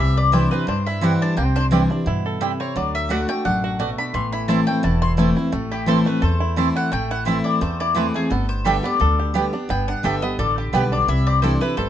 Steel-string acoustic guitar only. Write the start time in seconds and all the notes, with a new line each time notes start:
0.00 C3
0.32 E3 G3 D4 E4
0.51 D4 E4
0.67 G2
1.01 E3 G3 D4 E4
1.37 C3
1.71 E3 G3 D4 E4
1.90 D4 E4
2.06 B2
2.41 C3
2.76 D3
3.09 D3 A3 D4 F#4
3.28 D4 F#4
3.45 F#2
3.80 B2
4.14 A2
4.48 E3 A3 C4 E4
4.67 C4 E4
4.83 E2
5.17 E3 A3 C4 E4
5.36 C4 E4
5.52 A2
5.86 E3 A3 C4 E4
6.05 C4 E4
6.22 E2
6.56 E3 A3 C4 E4
6.92 A2
7.25 E3 A3 C4 E4
7.61 E2
7.95 E3 A3 C4 E4
8.14 C4 E4
8.31 G2
8.65 D3 G3 B3 G4
8.83 B3 G4
9.00 D3
9.34 D3 G3 B3 G4
9.53 B3 G4
9.69 G2
10.03 D3 G3 B3 G4
10.22 B3 G4
10.39 D3
10.73 D3 G3 B3 G4
11.08 C3
11.42 E3 G3 D4 E4
11.61 D4 E4
11.77 G2